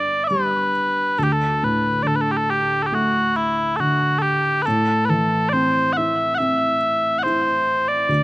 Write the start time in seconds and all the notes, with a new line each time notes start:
Already playing: G2 D3 G3 B3 D4 D5
0.24 B4 E5
0.30 G3
1.19 D2 A4
1.24 G4
1.33 A4
1.63 A2 B4
2.03 D3 D5
2.07 A4
2.16 B4
2.21 A4
2.32 G4
2.37 A4
2.50 G4
2.83 G4 A4
2.92 A3 F#4
3.36 E4
3.76 D3 F#4 A4
4.19 G4 A4
4.62 A4 B4
4.68 A2
5.05 B4
5.09 E3 A4
5.49 D5
5.53 C4 C5
5.93 F#5
5.97 E4 E5
6.35 E5 F#5
6.40 C4
7.19 F#5
7.23 E4 C5
7.88 D5
8.09 D2